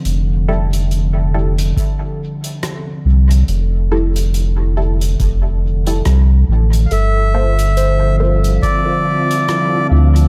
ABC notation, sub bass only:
X:1
M:4/4
L:1/8
Q:"Swing 16ths" 1/4=70
K:F
V:1 name="Sub bass" clef=bass
F,,,4 z3 C,, | F,,,4 F,,,2 C,, A,,, | G,,,4 z3 D,, |]